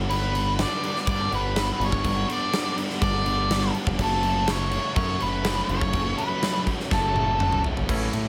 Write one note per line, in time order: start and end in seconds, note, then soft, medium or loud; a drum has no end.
0.00 0.64 G1 loud
0.00 0.10 D4 medium
0.09 0.33 G2 medium
0.09 0.33 D3 loud
0.09 0.34 G3 medium
0.09 0.34 B3 loud
0.09 0.34 D4 loud
0.09 0.60 B4 loud
0.09 crash medium
0.33 0.57 G2 medium
0.33 0.57 D3 medium
0.33 0.58 G3 medium
0.33 0.58 B3 medium
0.33 0.59 D4 medium
0.33 crash medium
0.57 0.82 G2 medium
0.57 0.81 D3 loud
0.57 0.83 G3 loud
0.57 0.83 B3 loud
0.57 0.84 D4 loud
0.57 1.05 D5 loud
0.57 snare loud
0.57 crash medium
0.82 1.04 G2 medium
0.82 1.05 D3 medium
0.82 1.06 G3 medium
0.82 1.06 B3 medium
0.82 1.06 D4 medium
0.82 crash medium
0.96 snare soft
1.06 1.29 G2 medium
1.06 1.27 G2 medium
1.06 1.29 D3 loud
1.06 1.30 G3 loud
1.06 1.30 B3 loud
1.06 1.31 D4 loud
1.06 1.31 D5 loud
1.06 kick loud
1.06 crash medium
1.30 1.71 G1 medium
1.30 1.53 G2 medium
1.30 1.54 D3 medium
1.30 1.55 G3 loud
1.30 1.55 B3 loud
1.30 1.55 D4 loud
1.30 crash medium
1.35 1.83 B4 loud
1.55 1.78 G2 loud
1.55 1.79 D3 loud
1.55 1.79 G3 loud
1.55 1.79 B3 loud
1.55 1.79 D4 loud
1.55 snare loud
1.55 crash medium
1.79 1.90 G1 loud
1.79 2.02 G2 medium
1.79 2.03 D3 medium
1.79 2.03 G3 medium
1.79 2.04 B3 medium
1.79 2.04 D4 medium
1.79 crash medium
1.84 2.28 C#5 loud
1.92 2.02 G1 medium
1.92 kick medium
2.03 2.24 G1 loud
2.03 2.26 G2 medium
2.03 2.26 D3 medium
2.03 2.27 G3 medium
2.03 2.27 B3 loud
2.03 2.27 D4 loud
2.03 kick loud
2.03 crash medium
2.27 2.50 G2 medium
2.27 2.50 D3 medium
2.27 2.51 G3 medium
2.27 2.51 B3 loud
2.27 2.51 D4 loud
2.27 crash medium
2.32 2.76 D5 medium
2.51 2.75 G2 loud
2.51 2.75 D3 loud
2.51 2.75 G3 loud
2.51 2.76 B3 loud
2.51 2.76 D4 loud
2.51 snare loud
2.51 crash medium
2.76 2.99 G2 medium
2.76 3.00 D3 medium
2.76 3.00 G3 medium
2.76 3.01 B3 loud
2.76 3.01 D4 loud
2.76 crash medium
2.90 snare soft
3.00 3.70 G1 medium
3.00 3.23 G2 medium
3.00 3.24 D3 loud
3.00 3.24 G3 loud
3.00 3.24 B3 loud
3.00 3.25 D4 loud
3.00 3.71 D5 loud
3.00 kick loud
3.00 crash medium
3.24 3.47 G2 medium
3.24 3.48 D3 medium
3.24 3.48 G3 medium
3.24 3.49 B3 medium
3.24 3.50 D4 loud
3.24 crash medium
3.49 3.72 G2 medium
3.49 3.72 D3 medium
3.49 3.72 G3 loud
3.49 3.73 B3 loud
3.49 3.73 D4 loud
3.49 snare loud
3.49 crash medium
3.73 3.96 G2 medium
3.73 3.97 D3 medium
3.73 3.97 G3 medium
3.73 3.97 B3 medium
3.73 3.97 D4 medium
3.73 crash medium
3.87 3.97 F1 medium
3.87 kick loud
3.98 4.77 F#1 loud
3.98 4.22 F#2 medium
3.98 4.21 C#3 medium
3.98 4.23 F#3 loud
3.98 4.23 A3 medium
3.98 4.23 C#4 loud
3.98 4.50 A4 medium
3.98 kick loud
3.98 crash medium
4.22 4.45 F#2 medium
4.22 4.45 C#3 medium
4.22 4.46 F#3 medium
4.22 4.47 A3 medium
4.22 4.47 C#4 medium
4.22 crash medium
4.46 4.70 F#2 loud
4.46 4.70 C#3 loud
4.46 4.71 F#3 loud
4.46 4.72 A3 loud
4.46 4.72 C#4 loud
4.46 4.95 C#5 loud
4.46 snare loud
4.46 crash medium
4.70 4.94 F#2 medium
4.70 4.95 C#3 medium
4.70 4.95 F#3 medium
4.70 4.96 A3 medium
4.70 4.96 C#4 loud
4.70 crash medium
4.95 5.19 F#2 medium
4.95 5.16 F#2 loud
4.95 5.19 C#3 loud
4.95 5.20 F#3 loud
4.95 5.21 A3 loud
4.95 5.21 C#4 loud
4.95 5.21 C#5 medium
4.95 kick loud
4.95 crash medium
5.20 5.60 F#1 medium
5.20 5.43 F#2 medium
5.20 5.43 C#3 medium
5.20 5.43 F#3 medium
5.20 5.45 A3 medium
5.20 5.45 C#4 loud
5.20 5.66 B4 loud
5.20 crash soft
5.44 5.67 F#2 medium
5.44 5.68 C#3 medium
5.44 5.68 F#3 loud
5.44 5.69 A3 loud
5.44 5.69 C#4 loud
5.44 snare loud
5.44 crash medium
5.68 5.79 F#1 loud
5.68 5.92 F#2 medium
5.68 5.92 C#3 medium
5.68 5.93 F#3 medium
5.68 5.93 A3 medium
5.68 5.93 C#4 medium
5.68 6.15 C#5 loud
5.68 crash medium
5.81 5.91 F#1 medium
5.81 kick medium
5.93 6.13 F#1 loud
5.93 6.16 F#2 loud
5.93 6.16 C#3 loud
5.93 6.17 F#3 loud
5.93 6.17 A3 loud
5.93 6.17 C#4 loud
5.93 kick loud
5.93 crash medium
6.17 6.40 F#2 medium
6.17 6.41 C#3 medium
6.17 6.42 F#3 medium
6.17 6.42 A3 medium
6.17 6.42 C#4 medium
6.17 6.63 B4 medium
6.17 crash medium
6.42 6.65 F#2 medium
6.42 6.66 C#3 loud
6.42 6.66 F#3 loud
6.42 6.66 A3 loud
6.42 6.67 C#4 loud
6.42 snare loud
6.42 crash medium
6.66 6.89 F#2 medium
6.66 6.90 C#3 loud
6.66 6.90 F#3 medium
6.66 6.90 A3 loud
6.66 6.90 C#4 loud
6.66 kick medium
6.66 crash medium
6.80 snare soft
6.90 7.60 F#1 medium
6.90 7.13 F#2 medium
6.90 7.14 C#3 medium
6.90 7.14 F#3 loud
6.90 7.15 A3 loud
6.90 7.15 C#4 loud
6.90 7.60 A4 loud
6.90 kick loud
6.90 snare medium
7.15 7.38 F#2 medium
7.15 7.39 C#3 medium
7.15 7.39 F#3 medium
7.15 7.39 A3 medium
7.15 7.40 C#4 medium
7.15 high tom medium
7.39 7.62 F#2 loud
7.39 7.63 C#3 loud
7.39 7.63 F#3 medium
7.39 7.64 A3 medium
7.39 7.64 C#4 loud
7.39 mid tom medium
7.52 mid tom medium
7.63 7.86 F#2 medium
7.63 7.87 C#3 medium
7.63 7.87 F#3 medium
7.63 7.87 A3 medium
7.63 7.87 C#4 loud
7.63 floor tom loud
7.77 7.87 G1 medium
7.77 floor tom loud
7.88 8.08 A1 loud
7.88 8.12 A2 medium
7.88 8.12 E3 medium
7.88 8.12 A3 loud
7.88 8.12 C#4 loud
7.88 8.13 E4 loud
7.88 kick loud
7.88 crash loud
8.12 8.28 A2 medium
8.12 8.28 A2 loud
8.12 8.28 E3 medium
8.12 8.28 A3 medium
8.12 8.28 C#4 medium
8.12 8.28 E4 medium
8.12 muted clean electric guitar stroke soft
8.12 ride medium